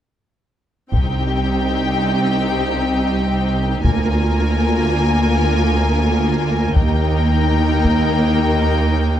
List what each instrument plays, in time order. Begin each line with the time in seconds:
0.92 cello section C2, double bass section C2, viola section C4 D#4, violin section G4 G5, taiko
3.85 cello section D2, double bass section D2, viola section A#3 F4, violin section A#4 G#5, taiko
6.75 cello section D#2, double bass section D#2, viola section A#3 D#4, violin section A#4 G5, taiko
7.85 taiko